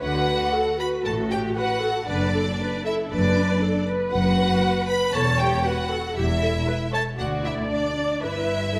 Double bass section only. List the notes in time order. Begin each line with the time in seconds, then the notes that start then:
0.01 D2
1.05 A1
2.09 F#1
3.11 F#1
4.12 F#1
5.14 E1
6.16 E1
7.19 D2
8.23 G1